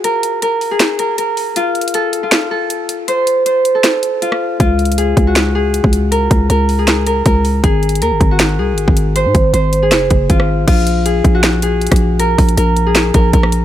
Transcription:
<<
  \new Staff \with { instrumentName = "Harp" } { \time 4/4 \key bes \minor \tempo 4 = 158 bes'4 bes'8. aes'8. bes'8 bes'8 r8 | f'4 a'8. f'8. a'4. | c''4 c''8. a'4~ a'16 f'4 | f'4 aes'8. ges'8. aes'4. |
bes'4 bes'8. aes'8. bes'8 bes'8 r8 | aes'4 bes'8. ges'8. aes'4. | c''4 c''8. aes'4~ aes'16 f'4 | f'4 aes'8. ges'8. aes'4. |
bes'4 bes'8. aes'8. bes'8 bes'8 r8 | }
  \new Staff \with { instrumentName = "808-style bass" } { \clef bass \time 4/4 \key bes \minor r1 | r1 | r1 | des,4. des,4.~ des,16 des,8.~ |
des,8 des,8 des,2 des,4 | aes,,4 ees,16 aes,,16 aes,,4 c,16. aes,,16. aes,,8.~ | aes,,16 aes,16 aes,,8 aes,,4 ges,,8 ges,,8 aes,,4 | bes,,4. bes,,4.~ bes,,16 bes,,8.~ |
bes,,8 bes,,8 bes,,4. bes,,8 bes,,4 | }
  \new DrumStaff \with { instrumentName = "Drums" } \drummode { \time 4/4 hh8 hh8 hh8 hho8 <hc hh sn>8 hh8 hh8 hho8 | \tuplet 3/2 { hh16 r16 r16 hh16 hh16 hh16 } hh8 hh8 <hc hh sn>4 hh8 hh8 | hh8 hh8 hh8 hh8 <hc hh sn>8 hh8 hh16 ss8. | \tuplet 3/2 { <hh bd>16 r16 r16 hh16 hh16 hh16 } hh8 <hh bd>8 <hc hh sn>4 hh16 bd16 hh8 |
hh8 <hh bd>8 hh8 hho8 <hc hh sn>8 hh8 <hh bd>8 hho8 | \tuplet 3/2 { <hh bd>16 r16 r16 hh16 hh16 hh16 } hh8 <hh bd>8 <hc hh sn>4 hh16 bd16 hh8 | hh8 <hh bd>8 hh8 hh8 <hc hh sn>8 <hh bd>8 <hh bd>16 ss8. | <cymc hh bd>8 hh8 hh8 <hh bd>8 <hc hh sn>8 hh8 hh32 hh32 <hh bd ss>32 hh8 r32 |
hh8 <hh hho bd>16 hh16 hh8 hh8 <hc hh sn>8 <hh bd>8 <hh bd>16 ss16 hh8 | }
>>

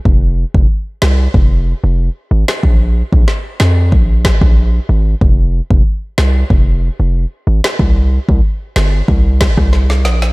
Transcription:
<<
  \new Staff \with { instrumentName = "808-style bass" } { \clef bass \time 4/4 \key bes \dorian \tempo 4 = 93 f,,8. f,,16 r8 c,8 f,,8. f,,8 r16 aes,,16 r16 | bes,,8. bes,,16 r8 f,8 bes,,8. bes,,8. aes,,8 | f,,8. f,,16 r8 c,8 f,,8. f,,8 r16 aes,,16 r16 | c,8. c,16 r8 g,,8 c,8. c,8. bes,,8 | }
  \new DrumStaff \with { instrumentName = "Drums" } \drummode { \time 4/4 bd8. bd16 r8 <ss sn>8 bd4 r8. <ss sn>16 | bd8. bd16 sn8 <ss sn>8 bd8 <bd ss sn>16 bd16 r4 | bd8. bd16 r8 <ss sn>8 bd4 r8. <ss sn>16 | bd8. bd16 r8 <ss sn>8 bd8 <bd ss sn>16 <bd ss>16 sn16 sn16 sn16 sn16 | }
>>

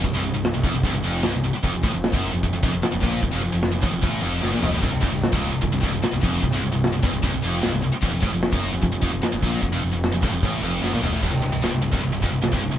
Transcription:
<<
  \new Staff \with { instrumentName = "Distorted electric guitar" } { \clef bass \time 4/4 \tempo 4 = 150 c,16 c,16 c,16 c,8 c,16 e,16 c,16 c,16 c,16 f,8 c,16 c,16 c,16 r16 | f,16 f,16 a,16 f,8 fis,8 f,16 f,16 f,16 f,16 f,16 r16 f,16 bes,8 | f,16 f,16 f,16 f,8 f,16 a,16 f,16 a,8 f,8 fis,16 bes,16 f,16 a,16 | c,16 c,16 e,16 c,8 des,8 c,16 c,16 c,16 c,16 c,16 r16 c,16 f,8 |
c,16 c,16 c,16 c,8 c,16 e,16 c,16 c,16 c,16 f,8 c,16 c,16 c,16 r16 | f,16 f,16 a,16 f,8 fis,8 f,16 f,16 f,16 f,16 f,16 r16 f,16 bes,8 | f,16 f,16 f,16 f,8 f,16 a,16 f,16 a,8 f,8 fis,16 bes,16 f,16 a,16 | c,16 c,16 c,16 c,16 des,16 c,16 c,16 c,16 c,16 c,16 f,16 c,16 c,16 c,16 c,16 c,16 | }
  \new Staff \with { instrumentName = "Distorted electric guitar" } { \clef bass \time 4/4 c,16 c,16 c,16 c,8 c,16 e,16 c,16 c,16 c,16 f,8 c,16 c,16 c,16 r16 | f,16 f,16 a,16 f,8 fis,8 f,16 f,16 f,16 f,16 f,16 r16 f,16 bes,8 | f,16 f,16 f,16 f,8 f,16 a,16 f,16 a,8 f,8 fis,16 bes,16 f,16 a,16 | c,16 c,16 e,16 c,8 des,8 c,16 c,16 c,16 c,16 c,16 r16 c,16 f,8 |
c,16 c,16 c,16 c,8 c,16 e,16 c,16 c,16 c,16 f,8 c,16 c,16 c,16 r16 | f,16 f,16 a,16 f,8 fis,8 f,16 f,16 f,16 f,16 f,16 r16 f,16 bes,8 | f,16 f,16 f,16 f,8 f,16 a,16 f,16 a,8 f,8 fis,16 bes,16 f,16 a,16 | c,16 c,16 c,16 c,16 des,16 c,16 c,16 c,16 c,16 c,16 f,16 c,16 c,16 c,16 c,16 c,16 | }
  \new Staff \with { instrumentName = "Picked electric bass" } { \clef bass \time 4/4 c,,16 c,,16 c,,16 c,,8 c,,16 e,,16 c,,16 c,,16 c,,16 f,,8 c,,16 c,,16 c,,16 r16 | f,,16 f,,16 a,,16 f,,8 fis,,8 f,,16 f,,16 f,,16 f,,16 f,,16 r16 f,,16 bes,,8 | f,,16 f,,16 f,,16 f,,8 f,,16 a,,16 f,,16 a,,8 f,,8 fis,,16 bes,,16 f,,16 a,,16 | c,,16 c,,16 e,,16 c,,8 des,,8 c,,16 c,,16 c,,16 c,,16 c,,16 r16 c,,16 f,,8 |
c,,16 c,,16 c,,16 c,,8 c,,16 e,,16 c,,16 c,,16 c,,16 f,,8 c,,16 c,,16 c,,16 r16 | f,,16 f,,16 a,,16 f,,8 fis,,8 f,,16 f,,16 f,,16 f,,16 f,,16 r16 f,,16 bes,,8 | f,,16 f,,16 f,,16 f,,8 f,,16 a,,16 f,,16 a,,8 f,,8 fis,,16 bes,,16 f,,16 a,,16 | c,,16 c,,16 c,,16 c,,16 des,,16 c,,16 c,,16 c,,16 c,,16 c,,16 f,,16 c,,16 c,,16 c,,16 c,,16 c,,16 | }
  \new DrumStaff \with { instrumentName = "Drums" } \drummode { \time 4/4 <hho bd>4 <hho sn>8 bd8 <hho bd>4 <hho sn>4 | <hho bd>8 bd8 <hho sn>16 bd8. <hho bd>8 bd8 <hho sn>8 bd8 | <hho bd>4 <hho sn>8 bd8 <hho bd>4 sn8 tomfh8 | <cymc bd>8 bd8 <hho sn>16 bd8. <hho bd>8 bd8 <hho sn>8 bd8 |
<hho bd>4 <hho sn>8 bd8 <hho bd>4 <hho sn>4 | <hho bd>8 bd8 <hho sn>16 bd8. <hho bd>8 bd8 <hho sn>8 bd8 | <hho bd>4 <hho sn>8 bd8 <hho bd>4 sn8 tomfh8 | <cymc bd>8 cymr8 <cymr sn>8 cymr16 bd16 cymr8 <bd cymr>8 <cymr sn>16 bd16 cymr8 | }
>>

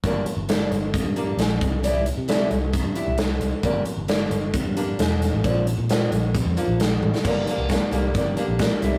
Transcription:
<<
  \new Staff \with { instrumentName = "Steel-string acoustic guitar" } { \clef bass \time 4/4 \key g \dorian \tempo 4 = 133 <d g bes d'>8 r8 <d g bes d'>8 r4 <d g bes d'>8 r4 | <e g d' e'>8 r8 <e g d' e'>8 r4 <e g d' e'>8 r4 | <d g bes d'>8 r8 <d g bes d'>8 r4 <d g bes d'>8 r4 | <d f bes d'>8 r8 <d f bes d'>8 r4 <d f bes d'>8 r4 |
<g, d g bes d'>8 <g bes d'>8 <d g bes d'>8 <g, d g bes d'>8 <d g bes d'>8 <g, d g bes d'>8 <d g bes d'>8 <c e g d' e'>8 | }
  \new Staff \with { instrumentName = "Picked electric bass" } { \clef bass \time 4/4 \key g \dorian g,,8 r16 g,,8. g,,8. g,8. bes,,8 c,8~ | c,8. c8. c,8. g,16 r16 c,8. c,16 r16 | g,,8 r16 g,,8. g,,8. g,8. e,,8. a,,16 | bes,,8. bes,8. bes,,8. f,16 r16 bes,,8. a,,16 r16 |
g,,8 r16 c,8 r16 c,8 g,,8 r16 bes,,8 r16 c,8 | }
  \new DrumStaff \with { instrumentName = "Drums" } \drummode { \time 4/4 <hh bd>8 hh8 <hh sn>8 hh8 <hh bd>8 hh8 <hh sn>8 <hh bd>8 | hh8 hh8 <hh sn>8 hh8 <hh bd>8 hh8 <hh sn>8 hh8 | <hh bd>8 hh8 <hh sn>8 hh8 <hh bd>8 hh8 <hh sn>8 <hh sn>8 | <hh bd>8 hh8 <hh sn>8 hh8 <hh bd>8 hh8 <hh sn>8 tommh16 sn16 |
<cymc bd>8 hh8 <hh bd sn>8 hh8 <hh bd>8 hh8 <hh bd sn>8 hh8 | }
>>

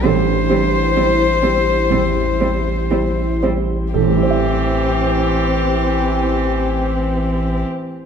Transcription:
<<
  \new Staff \with { instrumentName = "Violin" } { \time 4/4 \key a \minor \tempo 4 = 58 c''2.~ c''8 r8 | g'1 | }
  \new Staff \with { instrumentName = "Ambient pad" } { \time 4/4 \key a \minor <e' g' c''>1 | <e' g' c''>1 | }
  \new Staff \with { instrumentName = "Grand piano" } { \time 4/4 \key a \minor << { a'2.~ a'8 r8 | <a,, a, g e' a' c'' e''>1 | } \\ { a,,8 <g c''>8 <e' c''>8 <g c''>8 e,8 <g c''>8 <e' c''>8 <g c''>8 | r1 | } >> }
  \new Staff \with { instrumentName = "Viola" } { \time 4/4 \key a \minor c'8 c'8 c'8 c'8 c'8 c'8 c'8 c'8 | c'1 | }
  \new Staff \with { instrumentName = "Cello" } { \clef bass \time 4/4 \key a \minor g8 g8 g8 g8 g8 g8 g8 g8 | e1 | }
  \new Staff \with { instrumentName = "Sub bass" } { \clef bass \time 4/4 \key a \minor a,,1 | a,,1 | }
>>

